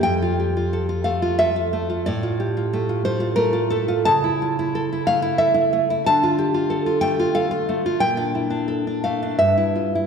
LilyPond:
\new Staff \with { instrumentName = "Nylon-string guitar" } { \time 3/4 \key f \major \tempo 4 = 90 << { g''4. f''8 e''4 | d''4. c''8 bes'8 a'8 | \key d \minor a''4. f''8 e''4 | a''4. g''8 f''4 |
g''4. f''8 e''4 | } \\ { f,16 f'16 g'16 f'16 a'16 f'16 a16 f'16 a'16 f'16 a16 f'16 | a,16 f'16 g'16 f'16 a16 f'16 a16 f'16 a16 f'16 a16 f'16 | cis16 e'16 f'16 e'16 a'16 e'16 a16 e'16 a'16 e'16 a16 e'16 | d16 f'16 g'16 f'16 a'16 f'16 a16 f'16 a'16 f'16 a16 f'16 |
bes,16 d'16 e'16 d'16 a'16 d'16 a16 d'16 g,16 e'16 f'16 e'16 | } >> }